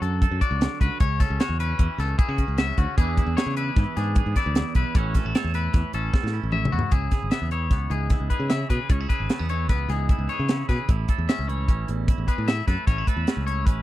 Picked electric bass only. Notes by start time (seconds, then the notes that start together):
0.02 F#2
0.31 F#2
0.51 C#2
0.81 C#2
1.01 C#2
1.30 C#2
1.49 E2
1.79 E2
1.98 C#2
2.29 C#3
2.48 C#2
2.78 D2
2.98 E2
3.27 E2
3.46 C#3
3.76 G#2
3.97 G#2
4.26 G#2
4.46 D2
4.75 B1
4.95 A1
5.25 A1
5.44 E2
5.74 E2
5.94 A1
6.23 A2
6.44 A1
6.73 E2
6.92 C#2
7.22 G#1
7.42 E2
7.71 C#2
7.90 C#2
8.20 C#2
8.40 C#3
8.70 B2
8.90 C#2
9.20 G#1
9.40 E2
9.69 C#2
9.89 C#2
10.19 C#2
10.40 C#3
10.69 B2
10.89 A1
11.18 E2
11.39 C#2
11.69 A1
11.89 A1
12.18 A1
12.38 A2
12.67 F#2
12.87 A1
13.17 E2
13.37 C#2
13.66 A1